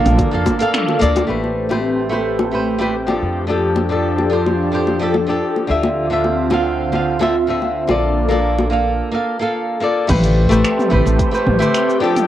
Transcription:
Already playing: A#3 D4 F4 A4 F5
0.05 A#1, closed hi-hat, mid tom, shaker
0.18 kick, closed hi-hat, high bongo, shaker
0.31 F2 A#3 F4 A4 F5
0.46 kick, closed hi-hat, high bongo, shaker
0.59 A#3 F4 A4 F5, closed hi-hat, shaker
0.74 finger snap, closed hi-hat, mid tom, shaker
0.89 high bongo
0.99 D2 A#3 F4 A4 D5, closed hi-hat, shaker
1.16 closed hi-hat, high bongo, shaker
1.27 A1 A3 C4 G4 B4 C5
1.44 high bongo
1.69 A3 G4 B4 C5, high bongo
2.09 A3 G4 B4 C5, high bongo
2.39 high bongo
2.51 A3 G4 B4 C5
2.78 A3 G4 B4 C5, high bongo
3.07 F3 D4 G4 A4, high bongo
3.22 F2 F3 D4 A4
3.47 F3 D4 G4 A4, high bongo
3.76 high bongo
3.89 F3 D4 G4 A4
4.18 high bongo
4.30 F3 D4 G4 C5
4.46 high bongo
4.72 F3 D4 G4 C5
4.87 high bongo
4.99 F3 D4 G4 A4
5.14 high bongo
5.27 F3 D4 G4 A4
5.56 high bongo
5.67 D2 D3 C4 F4 E5
5.83 high bongo
6.10 D3 C4 F4 E5
6.24 high bongo
6.50 D3 C4 F4 F5, high bongo
6.92 D3 C4 F4 F5, high bongo
7.19 D3 C4 F4 E5, high bongo
7.47 D3 C4 F4 E5
7.62 high bongo
7.87 A#1 A#3 D4 F4 A4 D5, high bongo
8.29 A#3 F4 A4 D5, high bongo
8.58 high bongo
8.70 A#3 F4 A4 F5
9.12 A#3 F4 A4 F5
9.40 A#3 F4 A4 F5
9.80 A#3 F4 A4 D5
10.07 A1 A3 C4 G4 B4 C5, kick, closed hi-hat, mid tom, crash, shaker
10.24 closed hi-hat, shaker
10.49 A1 A3 G4 B4 C5, closed hi-hat, shaker
10.65 finger snap, closed hi-hat, shaker
10.79 mid tom, shaker
10.90 A1 A3 G4 B4 C5, kick
11.06 A1, shaker
11.19 kick, closed hi-hat, shaker
11.31 A3 G4 B4 C5, shaker
11.47 A1, kick, mid tom
11.59 A3 G4 B4 C5, shaker
11.74 finger snap, closed hi-hat, shaker
11.90 shaker
12.00 F3 D4 G4 A4
12.16 closed hi-hat, mid tom, shaker

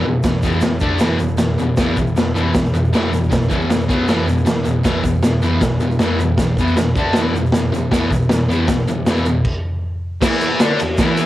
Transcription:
0.05 E2 B2, floor tom
0.23 E2 B2, kick, snare, floor tom, shaker
0.43 E2 B2 E3, kick, floor tom, shaker
0.52 shaker
0.61 E2 B2, snare, floor tom, shaker
0.80 D3 A3 D4, kick, floor tom, shaker
0.99 E2 B2 E3, snare, floor tom, shaker
1.18 E2 B2, floor tom, shaker
1.38 E2 B2, snare, floor tom, shaker
1.58 E2 B2, floor tom, shaker
1.77 E2 B2 E3, kick, snare, floor tom, shaker
1.97 E2 B2, kick, floor tom, shaker
2.07 shaker
2.16 E2 B2, snare, floor tom, shaker
2.34 E2 B2 E3, floor tom, shaker
2.54 E2 B2, kick, snare, floor tom, shaker
2.65 shaker
2.74 E2 B2, floor tom, shaker
2.85 shaker
2.93 E2 B2 E3, snare, floor tom, shaker
3.12 E2 B2, floor tom, shaker
3.23 shaker
3.31 E2 B2, kick, snare, floor tom, shaker
3.42 shaker
3.49 E2 B2 E3, kick, floor tom, shaker
3.61 shaker
3.70 E2 B2, snare, floor tom, shaker
3.88 B2 F#3 B3, kick, floor tom, shaker
4.08 E2 B2 E3, snare, floor tom, shaker
4.27 E2 B2, floor tom, shaker
4.38 shaker
4.45 E2 B2, snare, floor tom, shaker
4.64 E2 B2, floor tom, shaker
4.84 E2 B2 E3, kick, snare, floor tom, shaker
5.03 E2 B2, kick, floor tom, shaker
5.23 E2 B2, snare, floor tom, shaker
5.42 E2 B2 E3, floor tom, shaker
5.61 E2 B2, kick, snare, floor tom, shaker
5.80 E2 B2, floor tom, shaker
5.91 shaker
5.99 E2 B2 E3, snare, floor tom, shaker
6.19 E2 B2, floor tom, shaker
6.37 E2 B2, kick, snare, floor tom, shaker
6.57 E2 B2 E3, kick, floor tom, shaker
6.67 shaker
6.77 E2 B2, snare, floor tom, shaker
6.95 D3 A3 D4, kick, floor tom, shaker
7.13 E2, snare, floor tom, shaker
7.17 B2 E3
7.33 E2 B2, floor tom, shaker
7.46 shaker
7.52 E2 B2, snare, floor tom, shaker
7.72 E2 B2, floor tom, shaker
7.91 E2 B2 E3, kick, snare, floor tom, shaker
8.10 E2 B2, kick, floor tom, shaker
8.29 E2 B2, snare, floor tom, shaker
8.49 E2 B2 E3, floor tom, shaker
8.68 E2 B2, kick, snare, floor tom, shaker
8.88 E2 B2, floor tom, shaker
9.06 E2 B2 E3, snare, floor tom, shaker
9.16 shaker
9.25 E2 B2, floor tom, shaker
9.45 kick, crash
10.21 E2 E3, kick, snare, crash, shaker
10.41 ride, shaker
10.60 D3 D4, snare, ride, shaker
10.79 E2, ride, shaker
10.98 E2 E3, kick, snare, ride, shaker
11.17 ride, shaker

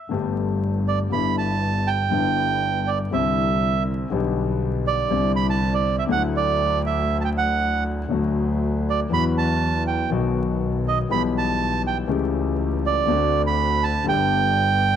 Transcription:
0.09 G1 G2 D3 A3 B3
0.13 G4
0.88 D5
1.10 G1 G2 D3 G3 B3 E4 B5
1.38 A5
1.87 G5
2.10 G1 G2 D3 G3 B3 E4
2.87 D5
3.11 C2 C3 D3 G3 C4 E4 E5
4.10 B1 B2 D3 G3 B3
4.14 G4
4.87 D5
5.08 C2 C3 D3 G3 C4
5.13 E4
5.36 B5
5.50 A5
5.74 D5
5.99 E5
6.08 D2 D3 F#3 A3 E4 F#5
6.37 D5
6.86 E5
7.21 G5 A5
7.38 F#5
8.09 D2 D3 F#3 A3
8.13 F#4
8.90 D5
9.09 E2 E3 F#3 B3 F#4
9.13 B5
9.38 A5
9.87 G5
10.09 B1 B2 D#3 F#3 B3
10.13 F#4
10.88 D#5
11.09 B1 B2 E3 G3 B3 G4 B5
11.38 A5
11.87 G5
12.07 C#2 C#3 E3 A3 C#4 G4
12.86 D5
13.05 D2 D3 A3 C4
13.10 F#4
13.47 B5
13.83 A5
14.04 G1 G2 D3 G3 B3
14.09 G4 G5

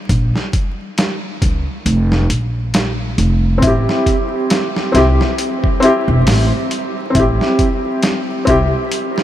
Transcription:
0.09 A#1, kick, closed hi-hat
0.36 snare
0.53 kick, closed hi-hat
0.98 snare, closed hi-hat
1.42 C#2, kick, closed hi-hat
1.86 F1, closed hi-hat
2.12 snare
2.30 A#1, closed hi-hat
2.74 snare, closed hi-hat
3.18 F1, closed hi-hat
3.58 C4
3.62 A1 E4, kick, closed hi-hat
3.67 G4
3.89 snare
4.06 kick, closed hi-hat
4.50 snare, closed hi-hat
4.76 snare
4.92 C2 C4 E4, snare, closed hi-hat
4.97 G4
5.21 snare
5.38 closed hi-hat
5.64 kick
5.80 C4 E4, closed hi-hat
5.85 G4
6.08 E1
6.27 A1, snare, open hi-hat
6.71 closed hi-hat
7.10 C4
7.15 A1 E4, kick, closed hi-hat
7.20 G4
7.41 snare
7.59 kick, closed hi-hat
8.03 snare, closed hi-hat
8.45 C2 C4 E4, kick, closed hi-hat
8.50 G4
8.91 closed hi-hat
9.18 snare

